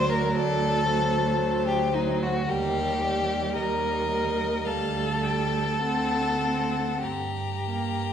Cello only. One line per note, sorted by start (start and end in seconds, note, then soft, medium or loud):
0.00 0.24 D2 medium
0.37 1.29 D2 medium
1.41 2.36 D2 medium
2.49 3.44 D#2 medium
3.56 4.52 D#2 medium
4.66 5.68 D2 medium
5.82 6.88 D2 medium
7.03 8.13 G2 medium